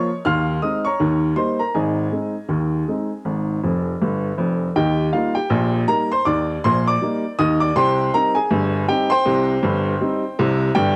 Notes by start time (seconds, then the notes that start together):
Already playing: C#5 C#6
0.25 D#2 D#3 F5 C6 F6
0.62 G#3 C4 D#4 D#5 D#6
0.85 C#5 A#5 C#6
1.00 D#2 D#3
1.36 G3 A#3 D#4 C5 C6
1.59 A#4 A#5
1.74 G#1 G#2 G#4 D#5 G#5
2.12 G#3 C4 D#4
2.49 D#2 D#3
2.88 G#3 C4 D#4
3.25 G#1 G#2
3.63 F1 F2
4.02 G1 G2
4.38 F1 F2
4.76 D#2 D#3 G4 D#5 G5
5.13 G3 A#3 D#4 F4 F5
5.35 G4 G5
5.50 A#1 A#2
5.88 G3 A#3 D#4 A#4 A#5
6.12 C5 C6
6.25 D#2 D#3 D5 D6
6.64 A#1 A#2 C5 C6
6.87 D5 D6
7.02 G3 A#3 D#4
7.39 D#2 D#3 D#5 D#6
7.60 D5 D6
7.76 C2 C3 C5 G5 C6
8.14 G3 C4 D#4 A#4 A#5
8.35 G#4 G#5
8.50 G1 G2
8.88 G3 C4 D#4 G4 G5
9.10 C5 G5 C6
9.25 C2 C3
9.63 G1 G2
10.01 G3 C4 D#4
10.39 C2 C3
10.75 G1 G2 G4 D5 G5